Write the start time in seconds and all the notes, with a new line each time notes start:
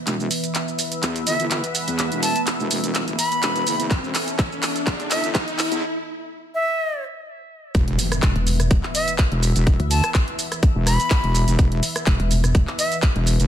0.07 E1 E3 B3 B4 E5, clap, closed hi-hat, riser, shaker
0.20 shaker
0.31 open hi-hat, shaker
0.44 closed hi-hat, shaker
0.55 clap, closed hi-hat, shaker
0.68 shaker
0.79 open hi-hat, shaker
0.92 closed hi-hat, shaker
1.03 E2, clap, closed hi-hat, shaker
1.16 closed hi-hat, shaker
1.27 G1 E5, open hi-hat, shaker
1.40 closed hi-hat, shaker
1.51 clap, closed hi-hat, shaker
1.64 closed hi-hat, shaker
1.75 open hi-hat, shaker
1.88 E2, closed hi-hat, shaker
1.99 clap, closed hi-hat, shaker
2.12 E1, closed hi-hat, shaker
2.23 A5, open hi-hat, shaker
2.36 closed hi-hat, shaker
2.47 clap, closed hi-hat, shaker
2.60 E1, shaker
2.71 E1, open hi-hat, shaker
2.84 closed hi-hat, shaker
2.95 clap, closed hi-hat, shaker
3.08 closed hi-hat, shaker
3.19 B5, open hi-hat, shaker
3.32 closed hi-hat, shaker
3.43 E1, clap, closed hi-hat, shaker
3.56 closed hi-hat, shaker
3.67 F#1, open hi-hat, shaker
3.80 closed hi-hat, shaker
3.91 E1 A4, kick, clap, closed hi-hat, shaker
4.04 shaker
4.15 clap, open hi-hat, shaker
4.28 closed hi-hat, shaker
4.39 kick, clap, closed hi-hat, shaker
4.52 shaker
4.63 clap, open hi-hat, shaker
4.76 closed hi-hat, shaker
4.87 E2, kick, clap, closed hi-hat, shaker
5.00 closed hi-hat, shaker
5.11 G1 E5, clap, open hi-hat, shaker
5.24 closed hi-hat, shaker
5.35 kick, clap, closed hi-hat, shaker
5.48 closed hi-hat, shaker
5.59 clap, open hi-hat, shaker
5.72 E2, closed hi-hat, shaker
6.55 E5
7.75 E1 E3 B3 B4 E5, kick, closed hi-hat, impact, shaker
7.88 closed hi-hat
7.99 open hi-hat, shaker
8.12 cross-stick, closed hi-hat, shaker
8.22 E1, kick, clap, closed hi-hat, shaker
8.36 E1, closed hi-hat
8.47 open hi-hat, shaker
8.60 cross-stick, closed hi-hat, shaker
8.71 E1, kick, closed hi-hat, shaker
8.83 clap
8.95 E5, open hi-hat, shaker
9.08 closed hi-hat, shaker
9.18 kick, clap, closed hi-hat, shaker
9.32 E1, closed hi-hat
9.43 open hi-hat, shaker
9.56 E1, closed hi-hat, shaker
9.67 kick, closed hi-hat, shaker
9.80 D2, closed hi-hat
9.91 A5, open hi-hat, shaker
10.04 cross-stick, closed hi-hat, shaker
10.14 kick, clap, closed hi-hat, shaker
10.28 closed hi-hat
10.39 open hi-hat, shaker
10.52 cross-stick, closed hi-hat, shaker
10.63 kick, closed hi-hat, shaker
10.76 E1
10.87 B5, cross-stick, open hi-hat, shaker
11.00 closed hi-hat, shaker
11.10 kick, clap, closed hi-hat, shaker
11.24 E1, closed hi-hat
11.35 open hi-hat, shaker
11.48 E1, closed hi-hat, shaker
11.59 E1, kick, closed hi-hat, shaker
11.72 closed hi-hat
11.83 open hi-hat, shaker
11.96 cross-stick, closed hi-hat, shaker
12.06 E1, kick, clap, closed hi-hat, shaker
12.20 E1, closed hi-hat
12.31 open hi-hat, shaker
12.44 cross-stick, closed hi-hat, shaker
12.55 E1, kick, closed hi-hat, shaker
12.67 clap
12.79 E5, open hi-hat, shaker
12.92 closed hi-hat, shaker
13.02 kick, clap, closed hi-hat, shaker
13.16 E1, closed hi-hat
13.27 open hi-hat, shaker
13.40 E1, closed hi-hat, shaker